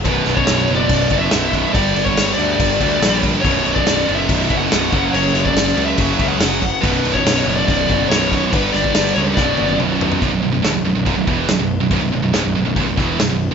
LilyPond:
<<
  \new Staff \with { instrumentName = "Lead electric guitar" } { \time 4/4 \key b \minor \tempo 4 = 142 b'8. cis''4 d''4 e''4~ e''16 | d''8. cis''8. d''2 r8 | cis''8. d''4 e''4 fis''4~ fis''16 | cis''8. d''4 e''4 fis''4~ fis''16 |
b'8. cis''4 d''16 d''4 cis''4 | b'8 d''4 cis''8 d''4 r4 | r1 | r1 | }
  \new Staff \with { instrumentName = "Distorted electric guitar" } { \clef bass \time 4/4 \key b \minor <b,, fis, b,>1 | <g, d g>1 | <b,, fis, b,>2.~ <b,, fis, b,>8 <fis, cis fis>8~ | <fis, cis fis>2.~ <fis, cis fis>8 r8 |
<b,, fis, b,>1 | <g, d g>2 <b,, fis, b,>2 | <b,, fis,>16 <b,, fis,>16 <b,, fis,>16 <b,, fis,>16 <d, a,>16 <b,, fis,>16 <b,, fis,>16 <b,, fis,>16 <b,, fis,>16 <b,, fis,>16 <e, b, e>8 <b,, fis,>16 <b,, fis,>8 <b,, fis,>16 | <b,, fis,>16 <b,, fis,>16 <b,, fis,>16 <b,, fis,>16 <d, a,>16 <b,, fis,>16 <b,, fis,>16 <b,, fis,>16 <b,, fis,>16 <b,, fis,>16 <e, b, e>8 <b,, fis,>16 <b,, fis,>8 <b,, fis,>16 | }
  \new Staff \with { instrumentName = "Distorted electric guitar" } { \clef bass \time 4/4 \key b \minor <b,, fis, b,>2~ <b,, fis, b,>8 <b,, fis, b,>8 <b,, fis, b,>4 | <g, d g>2~ <g, d g>8 <g, d g>8 <g, d g>4 | <b,, fis, b,>2~ <b,, fis, b,>8 <b,, fis, b,>8 <b,, fis, b,>8 <fis, cis fis>8~ | <fis, cis fis>2 <fis, cis fis>8 <fis, cis fis>4 r8 |
<b,, fis, b,>2~ <b,, fis, b,>8 <b,, fis, b,>8 <b,, fis, b,>4 | <g, d g>2 <b,, fis, b,>2 | <b,, fis,>16 <b,, fis,>16 <b,, fis,>16 <b,, fis,>16 <d, a,>16 <b,, fis,>16 <b,, fis,>16 <b,, fis,>16 <b,, fis,>16 <b,, fis,>16 <e, b, e>8 <b,, fis,>16 <b,, fis,>8 <b,, fis,>16 | <b,, fis,>16 <b,, fis,>16 <b,, fis,>16 <b,, fis,>16 <d, a,>16 <b,, fis,>16 <b,, fis,>16 <b,, fis,>16 <b,, fis,>16 <b,, fis,>16 <e, b, e>8 <b,, fis,>16 <b,, fis,>8 b,,16 | }
  \new Staff \with { instrumentName = "Distorted electric guitar" } { \clef bass \time 4/4 \key b \minor <b,, fis, b,>8 <b,, fis, b,>8 <b,, fis, b,>8 <b,, fis, b,>8 <b,, fis, b,>8 <b,, fis, b,>8 <b,, fis, b,>8 <b,, fis, b,>8 | <g, d g>8 <g, d g>8 <g, d g>8 <g, d g>8 <g, d g>8 <g, d g>8 <g, d g>8 <g, d g>8 | <b,, fis, b,>8 <b,, fis, b,>8 <b,, fis, b,>8 <b,, fis, b,>8 <b,, fis, b,>8 <b,, fis, b,>8 <b,, fis, b,>8 <fis, cis fis>8 | <fis, cis fis>8 <fis, cis fis>8 <fis, cis fis>8 <fis, cis fis>8 <fis, cis fis>8 <fis, cis fis>8 <fis, cis fis>8 <fis, cis fis>8 |
<b,, fis, b,>8 <b,, fis, b,>8 <b,, fis, b,>8 <b,, fis, b,>8 <b,, fis, b,>8 <b,, fis, b,>8 <b,, fis, b,>8 <b,, fis, b,>8 | <g, d g>8 <g, d g>8 <g, d g>8 <g, d g>8 <b,, fis, b,>8 <b,, fis, b,>8 <b,, fis, b,>8 <b,, fis, b,>8 | <b,, fis,>16 <b,, fis,>16 <b,, fis,>16 <b,, fis,>16 <d, a,>16 <b,, fis,>16 <b,, fis,>16 <b,, fis,>16 <b,, fis,>16 <b,, fis,>16 <e, b, e>8 <b,, fis,>16 <b,, fis,>8 <b,, fis,>16 | <b,, fis,>16 <b,, fis,>16 <b,, fis,>16 <b,, fis,>16 <d, a,>16 <b,, fis,>16 <b,, fis,>16 <b,, fis,>16 <b,, fis,>16 <b,, fis,>16 <e, b, e>8 <b,, fis,>16 <b,, fis,>8 b,,16 | }
  \new Staff \with { instrumentName = "Picked electric bass" } { \clef bass \time 4/4 \key b \minor b,,,8 b,,,8 b,,,8 fis,,8 b,,,8 fis,,8 b,,,4 | g,,8 g,,8 g,,8 d,8 g,,8 d,8 ais,,4 | b,,,8 b,,,8 b,,,8 fis,,8 b,,,8 fis,,8 b,,,8 fis,,8 | fis,,8 fis,,8 fis,,8 cis,8 fis,,8 cis,8 fis,,4 |
b,,,8 b,,,8 b,,,8 fis,,8 b,,,8 fis,,8 b,,,4 | g,,8 g,,8 g,,8 cis,8 b,,,8 fis,,8 b,,,4 | b,,,16 b,,,16 b,,,16 b,,,16 d,,16 b,,,16 b,,,16 b,,,16 b,,,16 b,,,16 e,,8 b,,,16 b,,,8 b,,,16 | b,,,16 b,,,16 b,,,16 b,,,16 d,,16 b,,,16 b,,,16 b,,,16 b,,,16 b,,,16 e,,8 b,,,16 b,,,8 r16 | }
  \new DrumStaff \with { instrumentName = "Drums" } \drummode { \time 4/4 <cymc bd>8 <cymc sn>16 bd16 <cymc sn>16 sn16 cymc8 <cymc bd>8 <cymc bd>8 <cymc sn>8 <cymc bd>8 | <cymc bd>8 cymc16 bd16 <cymc sn>8 cymc8 <cymc bd>8 <cymc bd>8 <cymc sn>8 <cymc bd>8 | <cymc bd>8 cymc16 bd16 <cymc sn>16 sn16 cymc8 <cymc bd>8 <cymc bd>8 <cymc sn>8 <cymc bd>8 | cymc8 <cymc sn>16 bd16 <cymc sn>16 sn16 cymc8 <cymc bd>8 <cymc bd>8 <cymc sn>8 <cymc bd>8 |
<cymc bd>8 cymc16 bd16 <cymc sn>16 sn16 cymc8 <cymc bd>8 <cymc bd>8 <cymc sn>8 <cymc bd>8 | <cymc bd>8 <cymc sn>16 bd16 <cymc sn>16 sn16 cymc8 <bd sn>8 tommh16 tommh16 toml8 tomfh16 tomfh16 | <cymc bd>4 <cymc sn>4 <cymc bd>8 bd8 <cymc sn>4 | <cymc bd>4 <cymc sn>4 <cymc bd>8 <bd sn>8 <cymc sn>4 | }
>>